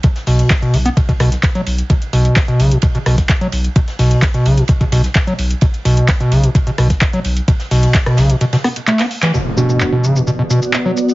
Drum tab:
RD |x---x-x-x-x-x-x-|x-x-x-x-x-x-x-x-|x---x-x-x-x-x-x-|x-x-x-x-x-x-x-x-|
HH |xxoxxxoxxxoxxxox|xxoxxxoxxxoxxxox|xxoxxxoxxxoxxxox|xxoxxxoxxxoxxxox|
SH |----------------|----------------|----------------|----------------|
CP |----x-------x---|----x-------x---|----x-------x---|----x-------x---|
SD |-o--o-----roo---|----o-----roo---|-o--o------oo---|----o-----roo---|
BD |o---o---oo--o---|o---o---o--oo---|o---o---oo--o---|o---o---o--oo---|

RD |x---x-x-xx-xxx-x|----------------|
HH |xxoxxxoxxxoxxxox|----------------|
SH |----------------|x-xxx-xxx-xxx-xx|
CP |----x-------xx-x|----x-------x---|
SD |-o--oro--or--o--|----------------|
BD |o---o-----------|----------------|